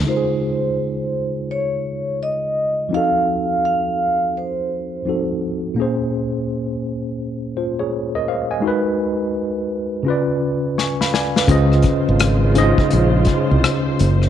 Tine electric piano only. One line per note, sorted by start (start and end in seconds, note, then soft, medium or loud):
0.03 2.86 C#3 soft
0.03 2.87 G#3 soft
0.03 2.88 D#4 soft
0.08 2.89 F4 soft
0.08 0.16 A#4 soft
0.17 2.93 G#4 medium
2.89 5.00 F3 medium
2.89 5.01 C4 soft
2.89 5.02 D#4 soft
2.94 5.03 F#4 soft
2.94 5.04 A4 medium
5.05 5.77 F3 soft
5.05 5.77 C4 soft
5.05 5.78 D#4 soft
5.05 5.78 F#4 soft
5.05 5.79 A4 soft
5.74 8.57 A#2 medium
5.74 8.58 A#3 medium
5.74 8.59 C#4 medium
5.80 7.53 G#4 medium
5.80 7.54 C5 medium
7.57 7.78 F4 soft
7.57 7.78 C5 medium
7.79 8.13 G#4 soft
7.79 8.13 C#5 medium
8.15 8.27 A#4 soft
8.15 8.27 D#5 medium
8.28 8.49 C5 soft
8.28 8.49 F5 medium
8.51 8.84 D#5 soft
8.51 8.84 G#5 soft
8.60 10.01 G#3 medium
8.60 10.02 D#4 medium
8.60 10.03 F#4 medium
8.66 10.04 A#4 medium
8.66 10.05 B4 medium
10.03 11.44 C#3 medium
10.03 11.45 C#4 medium
10.03 11.46 F4 medium
10.08 10.77 B4 medium
10.08 10.78 D5 medium
10.78 10.99 G#5 soft
10.78 10.99 C#6 soft
11.01 11.13 F5 soft
11.01 11.13 B5 medium
11.14 11.35 D5 soft
11.14 11.35 G#5 medium
11.37 11.70 B4 soft
11.37 11.70 F5 medium
11.48 11.76 C#3 medium
11.48 11.76 C#4 medium
11.48 11.77 F4 medium
11.48 11.77 C5 medium
11.48 11.78 D#5 medium
12.55 13.57 C#3 medium
12.55 13.57 C#4 medium
12.55 12.64 D#4 medium
12.55 13.58 C5 medium
12.55 13.59 D#5 medium
12.63 13.61 F4 medium